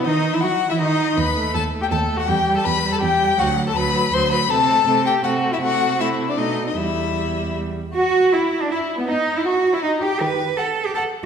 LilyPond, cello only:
\new Staff \with { instrumentName = "Cello" } { \clef bass \time 3/4 \key e \minor \tempo 4 = 161 dis8. e16 fis8. e16 dis4 | dis,4 dis,4 dis,4 | e,4 e,4 e,4 | d,4 d,4 d,4 |
c4 c4 c4 | c2 b,4 | e,2~ e,8 r8 | fis'4 e'8. d'16 e'8. b16 |
dis'8. e'16 fis'8. e'16 dis'8 g'8 | b'4 a'8. g'16 a'8. r16 | }